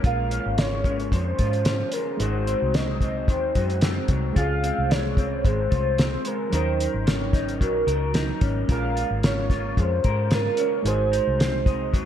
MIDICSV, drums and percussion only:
0, 0, Header, 1, 2, 480
1, 0, Start_track
1, 0, Tempo, 540541
1, 35, Time_signature, 4, 2, 24, 8
1, 10703, End_track
2, 0, Start_track
2, 0, Title_t, "Drums"
2, 35, Note_on_c, 9, 36, 96
2, 35, Note_on_c, 9, 42, 73
2, 124, Note_off_c, 9, 36, 0
2, 124, Note_off_c, 9, 42, 0
2, 277, Note_on_c, 9, 42, 66
2, 366, Note_off_c, 9, 42, 0
2, 514, Note_on_c, 9, 42, 78
2, 520, Note_on_c, 9, 38, 102
2, 603, Note_off_c, 9, 42, 0
2, 609, Note_off_c, 9, 38, 0
2, 749, Note_on_c, 9, 36, 74
2, 757, Note_on_c, 9, 42, 51
2, 838, Note_off_c, 9, 36, 0
2, 846, Note_off_c, 9, 42, 0
2, 884, Note_on_c, 9, 42, 41
2, 973, Note_off_c, 9, 42, 0
2, 994, Note_on_c, 9, 36, 78
2, 1000, Note_on_c, 9, 42, 74
2, 1082, Note_off_c, 9, 36, 0
2, 1089, Note_off_c, 9, 42, 0
2, 1231, Note_on_c, 9, 42, 65
2, 1236, Note_on_c, 9, 36, 77
2, 1319, Note_off_c, 9, 42, 0
2, 1325, Note_off_c, 9, 36, 0
2, 1360, Note_on_c, 9, 42, 38
2, 1449, Note_off_c, 9, 42, 0
2, 1465, Note_on_c, 9, 42, 81
2, 1474, Note_on_c, 9, 38, 92
2, 1554, Note_off_c, 9, 42, 0
2, 1563, Note_off_c, 9, 38, 0
2, 1701, Note_on_c, 9, 42, 77
2, 1790, Note_off_c, 9, 42, 0
2, 1952, Note_on_c, 9, 42, 76
2, 2040, Note_off_c, 9, 42, 0
2, 2197, Note_on_c, 9, 42, 66
2, 2286, Note_off_c, 9, 42, 0
2, 2435, Note_on_c, 9, 42, 73
2, 2441, Note_on_c, 9, 38, 101
2, 2524, Note_off_c, 9, 42, 0
2, 2530, Note_off_c, 9, 38, 0
2, 2669, Note_on_c, 9, 36, 69
2, 2678, Note_on_c, 9, 42, 52
2, 2758, Note_off_c, 9, 36, 0
2, 2767, Note_off_c, 9, 42, 0
2, 2913, Note_on_c, 9, 36, 83
2, 2920, Note_on_c, 9, 42, 68
2, 3002, Note_off_c, 9, 36, 0
2, 3009, Note_off_c, 9, 42, 0
2, 3155, Note_on_c, 9, 42, 66
2, 3157, Note_on_c, 9, 36, 69
2, 3244, Note_off_c, 9, 42, 0
2, 3246, Note_off_c, 9, 36, 0
2, 3282, Note_on_c, 9, 42, 42
2, 3371, Note_off_c, 9, 42, 0
2, 3387, Note_on_c, 9, 42, 76
2, 3396, Note_on_c, 9, 38, 100
2, 3476, Note_off_c, 9, 42, 0
2, 3485, Note_off_c, 9, 38, 0
2, 3626, Note_on_c, 9, 42, 72
2, 3630, Note_on_c, 9, 36, 90
2, 3714, Note_off_c, 9, 42, 0
2, 3718, Note_off_c, 9, 36, 0
2, 3874, Note_on_c, 9, 36, 90
2, 3875, Note_on_c, 9, 42, 81
2, 3963, Note_off_c, 9, 36, 0
2, 3963, Note_off_c, 9, 42, 0
2, 4118, Note_on_c, 9, 42, 62
2, 4207, Note_off_c, 9, 42, 0
2, 4361, Note_on_c, 9, 42, 75
2, 4367, Note_on_c, 9, 38, 98
2, 4450, Note_off_c, 9, 42, 0
2, 4456, Note_off_c, 9, 38, 0
2, 4591, Note_on_c, 9, 36, 77
2, 4601, Note_on_c, 9, 42, 53
2, 4680, Note_off_c, 9, 36, 0
2, 4689, Note_off_c, 9, 42, 0
2, 4836, Note_on_c, 9, 36, 82
2, 4842, Note_on_c, 9, 42, 70
2, 4925, Note_off_c, 9, 36, 0
2, 4931, Note_off_c, 9, 42, 0
2, 5077, Note_on_c, 9, 42, 60
2, 5079, Note_on_c, 9, 36, 77
2, 5166, Note_off_c, 9, 42, 0
2, 5168, Note_off_c, 9, 36, 0
2, 5314, Note_on_c, 9, 42, 74
2, 5323, Note_on_c, 9, 38, 94
2, 5403, Note_off_c, 9, 42, 0
2, 5412, Note_off_c, 9, 38, 0
2, 5549, Note_on_c, 9, 42, 82
2, 5638, Note_off_c, 9, 42, 0
2, 5795, Note_on_c, 9, 42, 79
2, 5883, Note_off_c, 9, 42, 0
2, 6042, Note_on_c, 9, 42, 69
2, 6131, Note_off_c, 9, 42, 0
2, 6279, Note_on_c, 9, 42, 71
2, 6285, Note_on_c, 9, 38, 100
2, 6367, Note_off_c, 9, 42, 0
2, 6374, Note_off_c, 9, 38, 0
2, 6512, Note_on_c, 9, 36, 82
2, 6519, Note_on_c, 9, 42, 54
2, 6527, Note_on_c, 9, 38, 27
2, 6600, Note_off_c, 9, 36, 0
2, 6608, Note_off_c, 9, 42, 0
2, 6616, Note_off_c, 9, 38, 0
2, 6646, Note_on_c, 9, 42, 44
2, 6735, Note_off_c, 9, 42, 0
2, 6757, Note_on_c, 9, 36, 73
2, 6763, Note_on_c, 9, 42, 73
2, 6846, Note_off_c, 9, 36, 0
2, 6852, Note_off_c, 9, 42, 0
2, 6996, Note_on_c, 9, 42, 55
2, 7084, Note_off_c, 9, 42, 0
2, 7230, Note_on_c, 9, 42, 74
2, 7239, Note_on_c, 9, 38, 99
2, 7319, Note_off_c, 9, 42, 0
2, 7327, Note_off_c, 9, 38, 0
2, 7470, Note_on_c, 9, 42, 82
2, 7473, Note_on_c, 9, 36, 93
2, 7559, Note_off_c, 9, 42, 0
2, 7562, Note_off_c, 9, 36, 0
2, 7715, Note_on_c, 9, 42, 89
2, 7717, Note_on_c, 9, 36, 90
2, 7804, Note_off_c, 9, 42, 0
2, 7806, Note_off_c, 9, 36, 0
2, 7964, Note_on_c, 9, 42, 61
2, 8053, Note_off_c, 9, 42, 0
2, 8200, Note_on_c, 9, 42, 74
2, 8206, Note_on_c, 9, 38, 109
2, 8289, Note_off_c, 9, 42, 0
2, 8295, Note_off_c, 9, 38, 0
2, 8434, Note_on_c, 9, 36, 74
2, 8442, Note_on_c, 9, 42, 50
2, 8450, Note_on_c, 9, 38, 27
2, 8523, Note_off_c, 9, 36, 0
2, 8531, Note_off_c, 9, 42, 0
2, 8539, Note_off_c, 9, 38, 0
2, 8678, Note_on_c, 9, 36, 83
2, 8683, Note_on_c, 9, 42, 71
2, 8767, Note_off_c, 9, 36, 0
2, 8772, Note_off_c, 9, 42, 0
2, 8916, Note_on_c, 9, 42, 55
2, 8921, Note_on_c, 9, 36, 81
2, 9004, Note_off_c, 9, 42, 0
2, 9010, Note_off_c, 9, 36, 0
2, 9152, Note_on_c, 9, 42, 79
2, 9161, Note_on_c, 9, 38, 93
2, 9241, Note_off_c, 9, 42, 0
2, 9250, Note_off_c, 9, 38, 0
2, 9387, Note_on_c, 9, 42, 82
2, 9476, Note_off_c, 9, 42, 0
2, 9640, Note_on_c, 9, 42, 86
2, 9728, Note_off_c, 9, 42, 0
2, 9885, Note_on_c, 9, 42, 67
2, 9973, Note_off_c, 9, 42, 0
2, 10125, Note_on_c, 9, 42, 78
2, 10131, Note_on_c, 9, 38, 94
2, 10214, Note_off_c, 9, 42, 0
2, 10220, Note_off_c, 9, 38, 0
2, 10355, Note_on_c, 9, 36, 87
2, 10363, Note_on_c, 9, 42, 54
2, 10444, Note_off_c, 9, 36, 0
2, 10452, Note_off_c, 9, 42, 0
2, 10599, Note_on_c, 9, 36, 72
2, 10604, Note_on_c, 9, 42, 74
2, 10688, Note_off_c, 9, 36, 0
2, 10693, Note_off_c, 9, 42, 0
2, 10703, End_track
0, 0, End_of_file